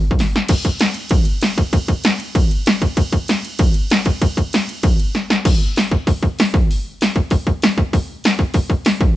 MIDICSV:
0, 0, Header, 1, 2, 480
1, 0, Start_track
1, 0, Tempo, 309438
1, 768, Time_signature, 4, 2, 24, 8
1, 14212, End_track
2, 0, Start_track
2, 0, Title_t, "Drums"
2, 168, Note_on_c, 9, 36, 80
2, 293, Note_on_c, 9, 46, 54
2, 312, Note_on_c, 9, 38, 59
2, 324, Note_off_c, 9, 36, 0
2, 448, Note_off_c, 9, 46, 0
2, 467, Note_off_c, 9, 38, 0
2, 554, Note_on_c, 9, 38, 90
2, 709, Note_off_c, 9, 38, 0
2, 752, Note_on_c, 9, 49, 122
2, 752, Note_on_c, 9, 57, 82
2, 763, Note_on_c, 9, 36, 114
2, 907, Note_off_c, 9, 49, 0
2, 907, Note_off_c, 9, 57, 0
2, 918, Note_off_c, 9, 36, 0
2, 1003, Note_on_c, 9, 57, 61
2, 1005, Note_on_c, 9, 36, 80
2, 1158, Note_off_c, 9, 57, 0
2, 1160, Note_off_c, 9, 36, 0
2, 1232, Note_on_c, 9, 57, 86
2, 1251, Note_on_c, 9, 38, 103
2, 1387, Note_off_c, 9, 57, 0
2, 1406, Note_off_c, 9, 38, 0
2, 1463, Note_on_c, 9, 57, 65
2, 1618, Note_off_c, 9, 57, 0
2, 1696, Note_on_c, 9, 57, 82
2, 1717, Note_on_c, 9, 36, 115
2, 1851, Note_off_c, 9, 57, 0
2, 1873, Note_off_c, 9, 36, 0
2, 1941, Note_on_c, 9, 57, 64
2, 2096, Note_off_c, 9, 57, 0
2, 2193, Note_on_c, 9, 57, 88
2, 2211, Note_on_c, 9, 38, 108
2, 2348, Note_off_c, 9, 57, 0
2, 2366, Note_off_c, 9, 38, 0
2, 2445, Note_on_c, 9, 36, 90
2, 2447, Note_on_c, 9, 57, 64
2, 2600, Note_off_c, 9, 36, 0
2, 2602, Note_off_c, 9, 57, 0
2, 2681, Note_on_c, 9, 36, 105
2, 2683, Note_on_c, 9, 57, 82
2, 2836, Note_off_c, 9, 36, 0
2, 2838, Note_off_c, 9, 57, 0
2, 2921, Note_on_c, 9, 57, 59
2, 2922, Note_on_c, 9, 36, 80
2, 3076, Note_off_c, 9, 57, 0
2, 3077, Note_off_c, 9, 36, 0
2, 3158, Note_on_c, 9, 57, 78
2, 3176, Note_on_c, 9, 38, 115
2, 3313, Note_off_c, 9, 57, 0
2, 3332, Note_off_c, 9, 38, 0
2, 3406, Note_on_c, 9, 57, 57
2, 3561, Note_off_c, 9, 57, 0
2, 3646, Note_on_c, 9, 36, 112
2, 3651, Note_on_c, 9, 57, 81
2, 3801, Note_off_c, 9, 36, 0
2, 3806, Note_off_c, 9, 57, 0
2, 3894, Note_on_c, 9, 57, 61
2, 4049, Note_off_c, 9, 57, 0
2, 4126, Note_on_c, 9, 57, 81
2, 4145, Note_on_c, 9, 38, 119
2, 4281, Note_off_c, 9, 57, 0
2, 4300, Note_off_c, 9, 38, 0
2, 4369, Note_on_c, 9, 36, 91
2, 4370, Note_on_c, 9, 57, 61
2, 4524, Note_off_c, 9, 36, 0
2, 4525, Note_off_c, 9, 57, 0
2, 4606, Note_on_c, 9, 36, 106
2, 4606, Note_on_c, 9, 57, 85
2, 4761, Note_off_c, 9, 36, 0
2, 4761, Note_off_c, 9, 57, 0
2, 4846, Note_on_c, 9, 57, 59
2, 4848, Note_on_c, 9, 36, 85
2, 5001, Note_off_c, 9, 57, 0
2, 5003, Note_off_c, 9, 36, 0
2, 5089, Note_on_c, 9, 57, 77
2, 5108, Note_on_c, 9, 38, 109
2, 5245, Note_off_c, 9, 57, 0
2, 5263, Note_off_c, 9, 38, 0
2, 5344, Note_on_c, 9, 57, 65
2, 5499, Note_off_c, 9, 57, 0
2, 5563, Note_on_c, 9, 57, 85
2, 5573, Note_on_c, 9, 36, 117
2, 5718, Note_off_c, 9, 57, 0
2, 5728, Note_off_c, 9, 36, 0
2, 5804, Note_on_c, 9, 57, 65
2, 5959, Note_off_c, 9, 57, 0
2, 6053, Note_on_c, 9, 57, 85
2, 6072, Note_on_c, 9, 38, 111
2, 6208, Note_off_c, 9, 57, 0
2, 6227, Note_off_c, 9, 38, 0
2, 6288, Note_on_c, 9, 57, 69
2, 6295, Note_on_c, 9, 36, 94
2, 6443, Note_off_c, 9, 57, 0
2, 6450, Note_off_c, 9, 36, 0
2, 6538, Note_on_c, 9, 57, 84
2, 6540, Note_on_c, 9, 36, 108
2, 6694, Note_off_c, 9, 57, 0
2, 6695, Note_off_c, 9, 36, 0
2, 6782, Note_on_c, 9, 36, 80
2, 6790, Note_on_c, 9, 57, 56
2, 6937, Note_off_c, 9, 36, 0
2, 6945, Note_off_c, 9, 57, 0
2, 7026, Note_on_c, 9, 57, 82
2, 7044, Note_on_c, 9, 38, 116
2, 7181, Note_off_c, 9, 57, 0
2, 7200, Note_off_c, 9, 38, 0
2, 7273, Note_on_c, 9, 57, 60
2, 7428, Note_off_c, 9, 57, 0
2, 7494, Note_on_c, 9, 57, 79
2, 7499, Note_on_c, 9, 36, 114
2, 7649, Note_off_c, 9, 57, 0
2, 7655, Note_off_c, 9, 36, 0
2, 7747, Note_on_c, 9, 57, 62
2, 7902, Note_off_c, 9, 57, 0
2, 7986, Note_on_c, 9, 38, 66
2, 8141, Note_off_c, 9, 38, 0
2, 8226, Note_on_c, 9, 38, 97
2, 8381, Note_off_c, 9, 38, 0
2, 8457, Note_on_c, 9, 36, 124
2, 8457, Note_on_c, 9, 46, 68
2, 8457, Note_on_c, 9, 49, 127
2, 8612, Note_off_c, 9, 36, 0
2, 8612, Note_off_c, 9, 46, 0
2, 8612, Note_off_c, 9, 49, 0
2, 8938, Note_on_c, 9, 46, 64
2, 8957, Note_on_c, 9, 38, 119
2, 9094, Note_off_c, 9, 46, 0
2, 9112, Note_off_c, 9, 38, 0
2, 9175, Note_on_c, 9, 36, 91
2, 9330, Note_off_c, 9, 36, 0
2, 9417, Note_on_c, 9, 36, 105
2, 9420, Note_on_c, 9, 46, 64
2, 9572, Note_off_c, 9, 36, 0
2, 9576, Note_off_c, 9, 46, 0
2, 9657, Note_on_c, 9, 36, 89
2, 9812, Note_off_c, 9, 36, 0
2, 9906, Note_on_c, 9, 46, 66
2, 9924, Note_on_c, 9, 38, 119
2, 10061, Note_off_c, 9, 46, 0
2, 10080, Note_off_c, 9, 38, 0
2, 10143, Note_on_c, 9, 36, 118
2, 10298, Note_off_c, 9, 36, 0
2, 10404, Note_on_c, 9, 46, 72
2, 10559, Note_off_c, 9, 46, 0
2, 10872, Note_on_c, 9, 46, 62
2, 10891, Note_on_c, 9, 38, 118
2, 11027, Note_off_c, 9, 46, 0
2, 11046, Note_off_c, 9, 38, 0
2, 11102, Note_on_c, 9, 36, 87
2, 11257, Note_off_c, 9, 36, 0
2, 11330, Note_on_c, 9, 46, 65
2, 11340, Note_on_c, 9, 36, 104
2, 11485, Note_off_c, 9, 46, 0
2, 11495, Note_off_c, 9, 36, 0
2, 11583, Note_on_c, 9, 36, 88
2, 11738, Note_off_c, 9, 36, 0
2, 11824, Note_on_c, 9, 46, 61
2, 11843, Note_on_c, 9, 38, 123
2, 11980, Note_off_c, 9, 46, 0
2, 11998, Note_off_c, 9, 38, 0
2, 12062, Note_on_c, 9, 36, 96
2, 12217, Note_off_c, 9, 36, 0
2, 12305, Note_on_c, 9, 36, 101
2, 12311, Note_on_c, 9, 46, 65
2, 12460, Note_off_c, 9, 36, 0
2, 12467, Note_off_c, 9, 46, 0
2, 12783, Note_on_c, 9, 46, 62
2, 12801, Note_on_c, 9, 38, 113
2, 12938, Note_off_c, 9, 46, 0
2, 12956, Note_off_c, 9, 38, 0
2, 13012, Note_on_c, 9, 36, 84
2, 13168, Note_off_c, 9, 36, 0
2, 13242, Note_on_c, 9, 46, 71
2, 13251, Note_on_c, 9, 36, 100
2, 13397, Note_off_c, 9, 46, 0
2, 13406, Note_off_c, 9, 36, 0
2, 13490, Note_on_c, 9, 36, 90
2, 13645, Note_off_c, 9, 36, 0
2, 13725, Note_on_c, 9, 46, 67
2, 13743, Note_on_c, 9, 38, 113
2, 13880, Note_off_c, 9, 46, 0
2, 13899, Note_off_c, 9, 38, 0
2, 13970, Note_on_c, 9, 36, 110
2, 14125, Note_off_c, 9, 36, 0
2, 14212, End_track
0, 0, End_of_file